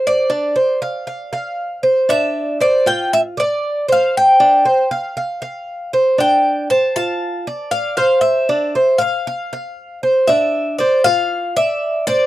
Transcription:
X:1
M:4/4
L:1/8
Q:1/4=117
K:C
V:1 name="Cuban tres"
d6- d z | e2 d g e d2 f | g6- g z | g2 a a3 f f |
e3 f4 z | e2 d f2 e2 d |]
V:2 name="Cuban tres"
c D c f f f2 c | D2 c F2 d2 c- | c D c f f f2 c | D2 c F2 d2 c- |
c D c f f f2 c | D2 c F2 d2 c |]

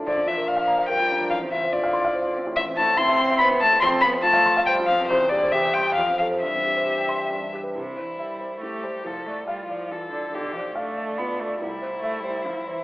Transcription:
X:1
M:3/4
L:1/16
Q:1/4=141
K:F
V:1 name="Violin"
d2 e2 f4 g4 | f2 e2 d6 z2 | [K:C] e2 a2 c'4 b2 a2 | c'2 b2 a4 g2 f2 |
c2 d2 e2 g2 f2 f2 | e8- e2 z2 | E8 G4 | A4 F4 A4 |
G4 D8 | E12 |]
V:2 name="Grand piano"
B,,, D F B d f b f B F D F,, | A,,, C F c F f c' f c F C A,, | [K:C] A,,, C E c E e c' e c E C E,, | F,, C F c F f c' f c F C C, |
E,, C G c G g c' g F,, C A c | G,, C G c G g c' g G,, D G B | C,,2 c2 e2 c2 E2 c2 | C,,2 d2 f2 d2 F2 d2 |
B,,,2 d2 f2 d2 F2 d2 | C,,2 c2 e2 c2 E2 c2 |]
V:3 name="Cello" clef=bass
D,2 E,2 F,4 G,4 | F,2 E,2 D,6 z2 | [K:C] E,2 A,2 C4 B,2 A,2 | C2 B,2 A,4 G,2 F,2 |
C,2 D,2 E,2 G,2 F,2 F,2 | E,8- E,2 z2 | C,2 E,2 G,4 A,2 G,2 | F,2 A,2 G,2 F,2 E,2 D,2 |
D,2 F,2 A,4 B,2 A,2 | G,4 A,2 G,2 F,2 E,2 |]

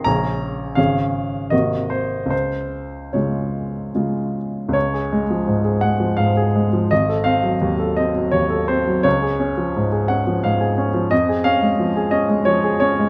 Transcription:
X:1
M:3/4
L:1/16
Q:1/4=84
K:Db
V:1 name="Grand piano"
b4 f4 e2 c2 | c4 d6 z2 | d6 g2 f4 | e2 f4 e2 d2 c2 |
d6 g2 f4 | e2 f4 e2 d2 d2 |]
V:2 name="Grand piano" clef=bass
[B,,,D,DA]4 [A,,,D,DA]4 [A,,,C,B,G]4 | D,,4 [D,A,F]4 [D,A,F]4 | D,, A A, F, A,, A A, F, A,, A A, F, | A,,, =A C G, E,, A C G, E,, A C G, |
D,, A D F, A,, A D F, A,, A D F, | F,, A D A, F, A D A, F, A D A, |]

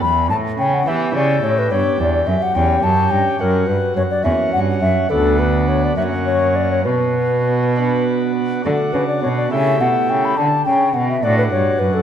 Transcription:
X:1
M:6/8
L:1/16
Q:3/8=70
K:Edor
V:1 name="Flute"
b2 a2 g f e2 d2 c B | [K:Bm] c2 d2 e f g2 a2 g2 | ^A2 B2 c d e2 f2 e2 | A2 B2 c d e2 c2 d c |
B8- B2 z2 | [K:D] A2 B d c d e2 f2 g b | a2 g2 f e d B c2 B A |]
V:2 name="Pipe organ"
z6 [B,EG]6 | [K:Bm] [B,DG]6 [CG]6 | [CF]6 [^A,CF]6 | [B,DF]6 [^A,CF]6 |
z6 [B,DF]6 | [K:D] [A,DF]6 [A,EG]6 | z6 [A,DF]6 |]
V:3 name="Pipe organ" clef=bass
E,,2 A,,2 C,2 E,2 C,2 A,,2 | [K:Bm] G,,2 E,,2 F,,2 E,,2 F,,2 G,,2 | F,,2 G,,2 F,,2 E,,2 G,,2 F,,2 | D,,6 F,,6 |
B,,8- B,,2 z2 | [K:D] D,2 C,2 B,,2 C,2 B,,2 C,2 | D,2 C,2 B,,2 A,,2 G,,2 F,,2 |]
V:4 name="Cello" clef=bass
E,,2 A,,2 C,2 E,2 C,2 A,,2 | [K:Bm] G,,2 E,,2 F,,2 E,,2 F,,2 G,,2 | F,,2 G,,2 F,,2 E,,2 G,,2 F,,2 | D,,6 F,,6 |
B,,8- B,,2 z2 | [K:D] D,2 C,2 B,,2 C,2 B,,2 C,2 | D,2 C,2 B,,2 A,,2 G,,2 F,,2 |]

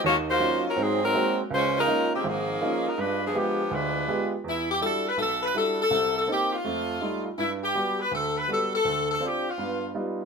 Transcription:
X:1
M:4/4
L:1/16
Q:"Swing" 1/4=164
K:Gphr
V:1 name="Saxophone section"
[B,F_G_d]2 [B,FGc]4 [_G,_DFB]2 [G,CEA]2 [G,CEB]4 z2 | [A,_DFc]2 [A,EFB]4 [E,A,CG]2 [F,B,EA]6 [A,EFB]2 | [A,DF=B]2 [F,=B,DA]2 [F,B,DG]4 [A,DFB]6 z2 | [K:Em] E2 G2 A2 B2 A2 B2 A2 A2- |
A2 A2 G2 =F8 z2 | E2 G4 B2 A2 B2 A2 A2- | A2 A2 G2 =F4- F z4 z |]
V:2 name="Grand piano"
[E,,E,]4 [_G,_DEF]2 z2 [A,,C]4 [A,B,C_G]2 z2 | _D,,4 [B,_DEF]2 z2 A,,,4 [B,DEF]2 z2 | G,,4 [A,=B,FG]2 z2 D,,4 [A,B,FG]2 z2 | [K:Em] E,,4 [G,DEF]2 z2 B,,,4 [G,DEF]2 z2 |
[C,,C,]4 [_B,C_E]2 z2 [=F,,A,]4 [G,A,E=F]2 z2 | G,,4 [G,B,F]2 z2 D,,4 [G,B,F]2 z2 | D,,4 [CD=F]2 z2 [G,,B,]4 [G,B,^DF]2 z2 |]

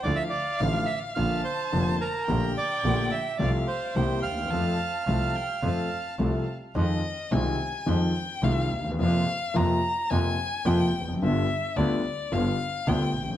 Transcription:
X:1
M:4/4
L:1/16
Q:1/4=108
K:F
V:1 name="Violin"
f8 a8 | g8 f4 g4 | a4 a2 g2 a6 z2 | [K:Fm] e4 a4 g4 f3 z |
f4 b4 a4 g3 z | =e4 =d4 f4 g3 z |]
V:2 name="Bandoneon"
d e d2 f2 e2 f2 c4 B2- | B2 d4 e2 d2 c4 f2- | f12 z4 | [K:Fm] z16 |
z16 | z16 |]
V:3 name="Grand piano" clef=bass
[D,,D,F,A,E]2 z2 [A,,,A,,D,F,A,E]2 z2 [B,,,B,,D,F,B,F]2 z2 [F,,,F,,D,F,B,F]2 z2 | [B,,,B,,D,A,B,G]2 z2 [B,,,B,,D,A,B,G]2 z2 [C,,C,F,A,CA]2 z2 [C,,C,E,B,CG]2 z/2 D,,/2 _E,,/2 =E,,/2 | [F,,F,A,CA]2 z2 [C,,C,F,A,CA]2 z2 [F,,F,A,CA]2 z2 [C,,C,F,A,CA]2 z2 | [K:Fm] [F,,E,F,A,CF]2 z2 [C,,C,E,A,CF]2 z2 [F,,E,F,A,CF]2 z2 [C,,C,E,A,CF]2 z/2 =D,,/2 E,,/2 =E,,/2 |
[F,,C,F,B,F]2 z2 [F,,C,F,B,F]2 z2 [F,,C,F,B,F]2 z2 [F,,C,F,B,F]2 z/2 =E,,/2 F,,/2 _G,,/2 | [G,,,G,,=D,G,=B,F]2 z2 [=D,,D,G,B,F]2 z2 [G,,,G,,D,G,B,F]2 z2 [D,,D,G,B,F]2 z/2 =A,,,/2 _B,,,/2 z/2 |]
V:4 name="Double bass" clef=bass
D,,2 z2 A,,,2 z2 B,,,2 z2 F,,,2 z2 | B,,,2 z2 B,,,2 z2 C,,2 z2 C,,2 _E,,2 | F,,2 z2 C,,2 z2 F,,2 z2 C,,2 z2 | [K:Fm] F,,2 z2 C,,2 z2 F,,2 z2 C,,2 E,,2 |
F,,2 z2 F,,2 z2 F,,2 z2 F,,2 F,,,2 | G,,,2 z2 =D,,2 z2 G,,,2 z2 D,,2 B,,,2 |]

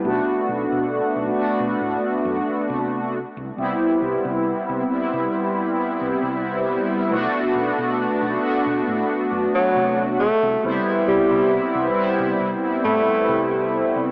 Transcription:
X:1
M:4/4
L:1/16
Q:1/4=68
K:Bphr
V:1 name="Analog polysynth"
[A,B,DF]6 [A,B,DF]8 z2 | [G,B,CE]6 [G,B,CE]8- [G,B,CE]2 | [A,B,DF]6 [A,B,DF]8 z2 | [G,B,CE]6 [G,B,CE]8- [G,B,CE]2 |]
V:2 name="Tenor saxophone" clef=bass
z16 | z16 | z8 z3 F,2 z A,2 | z2 G,2 z6 A,3 z3 |]
V:3 name="Fretless electric bass" clef=bass
B,,, z B,,, B,, z B,,, z B,, A,, z F,, z C,2 z C,, | C,, z C,, C, z C,, z C, z3 C,, C,,2 z2 | B,,, z B,,, B,, z B,,, z B,, A,, z F,, z C,2 z C,, | C,, z C,, C, z C,, z C, C,, z A,, z C,2 z C,, |]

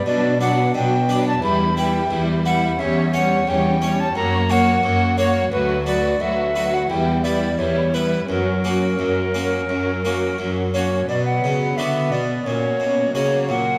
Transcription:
X:1
M:4/4
L:1/16
Q:1/4=87
K:Bm
V:1 name="Recorder"
d2 f2 g3 a b2 g4 f2 | e2 f2 g3 a ^a2 f4 c2 | B2 d2 e3 f g2 d2 c2 B2 | ^A12- A2 c2 |
d f3 e2 d2 c4 c2 f2 |]
V:2 name="Violin section"
B2 B2 B2 B2 B2 B2 B2 B2 | c2 c2 c2 c2 c2 c2 c2 c2 | B2 B2 B2 B2 B2 B2 B2 B2 | F2 F2 F2 F2 F2 F2 F2 F2 |
B4 F4 F8 |]
V:3 name="Violin section"
D2 D2 D2 D2 E2 E2 E2 E2 | C2 C2 C2 C2 F2 F2 F2 F2 | F2 F2 F2 F2 E2 E2 E2 E2 | C2 C2 C2 C2 C2 C2 C2 C2 |
B,8 C4 ^A,4 |]
V:4 name="Harpsichord"
z2 [DB]4 [DB]2 z2 [EB]4 [EB]2 | z2 [Cc]4 [Cc]2 z2 [^A,Fc]4 [A,Fc]2 | z2 [B,FB]4 [B,FB]2 z2 [B,EB]4 [B,EB]2 | z2 [^A,CF]4 [A,CF]2 z2 [A,CF]4 [A,CF]2 |
z4 [B,DF]4 z4 [CF]4 |]
V:5 name="Harpsichord" clef=bass
B,,4 B,,4 E,,4 E,,4 | E,,4 E,,4 F,,4 F,,4 | D,,4 D,,4 E,,4 E,,4 | F,,4 F,,4 F,,4 F,,4 |
B,,2 C,2 D,2 B,,2 ^A,,2 B,,2 C,2 A,,2 |]
V:6 name="Viola section" clef=bass
F,2 F,2 F,2 F,2 G,2 G,2 G,2 G,2 | G,2 G,2 G,2 G,2 ^A,2 A,2 A,2 A,2 | F,2 F,2 F,2 F,2 G,2 G,2 G,2 G,2 | F,2 F,2 F,2 F,2 F,2 F,2 F,2 F,2 |
F,4 B,4 ^A,4 F,4 |]
V:7 name="Cello section" clef=bass
B,,4 B,,4 E,,4 E,,4 | E,,4 E,,4 F,,4 F,,4 | D,,4 D,,4 E,,4 E,,4 | F,,4 F,,4 F,,4 F,,4 |
B,,2 C,2 D,2 B,,2 ^A,,2 B,,2 C,2 A,,2 |]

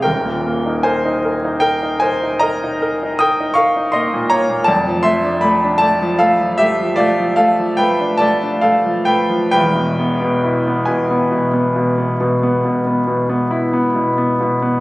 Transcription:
X:1
M:12/8
L:1/16
Q:3/8=50
K:Ebmix
V:1 name="Grand piano"
[Bg]4 [ca]4 [Bg]2 [ca]2 [eb]4 [ge']2 [fd']2 [ec']2 [db]2 | [K:Ephr] [da]2 [ec']2 [db]2 [da]2 [Af]2 [Ge]2 [Fd]2 [Af]2 [Bg]2 [da]2 [Af]2 [Bg]2 | [Bg]6 [B^g]16 z2 |]
V:2 name="Grand piano"
[E,,,E,,] B,, B, E B E B E2 E B E B E B E B E B E B, B,, B, B,, | [K:Ephr] [F,,,F,,] F, A, D A, D A, F, A, F, A, F, A, F, A, F, A, D A, D A, F, A, F, | [E,,,E,,] B,, B, B,, E B, B,, B, B,, B, B,, B, B,, B, B,, B, B,, B, E B, B,, B, B,, B, |]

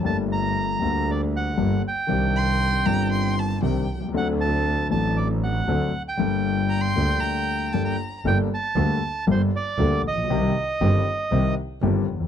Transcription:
X:1
M:4/4
L:1/16
Q:1/4=117
K:Gm
V:1 name="Violin"
z16 | z2 c'4 b2 c'2 a2 g3 z | z16 | z4 b c'3 b4 a b3 |
z16 | z16 |]
V:2 name="Bandoneon"
a2 b6 d2 ^f4 g2- | g8- g2 z6 | ^f2 a4 a2 d2 f4- f g- | g12- g2 z2 |
g2 a6 c2 d4 e2- | e8- e2 z6 |]
V:3 name="Grand piano" clef=bass
[G,,,G,,G,A,B,D]6 [D,,D,G,B,DA]6 [G,,,G,,G,B,DA]2 z2 | [C,,C,E,CDG]6 [G,,,G,,E,CDG]6 [C,,C,E,CDG]2 z/2 =B,,,/2 C,,/2 ^C,,/2 | [D,,D,^F,CDA]6 [A,,,A,,F,CDA]6 [D,,D,F,CDA]2 z2 | [G,,,G,,G,B,DA]6 [D,,D,G,A,B,D]6 [G,,,G,,G,B,DA]2 z2 |
[G,,,G,,G,B,DA]2 z2 [D,,D,G,B,DA]2 z2 [G,,,G,,G,B,DA]2 z2 [D,,D,G,B,DA]2 z/2 A,,,/2 B,,,/2 =B,,,/2 | [C,,C,E,G,CG]2 z2 [G,,,G,,E,G,CG]2 z2 [C,,C,E,G,CG]2 z2 [G,,,G,,E,G,CG]2 z/2 =E,,/2 F,,/2 z/2 |]
V:4 name="Double bass" clef=bass
G,,,6 D,,6 G,,,2 z2 | C,,6 G,,,6 C,,2 C,,2 | D,,6 A,,,6 D,,2 z2 | G,,,6 D,,2 z8 |
G,,,2 z2 D,,2 z2 G,,,2 z2 D,,2 B,,,2 | C,,2 z2 G,,,2 z2 C,,2 z2 G,,,2 F,,,2 |]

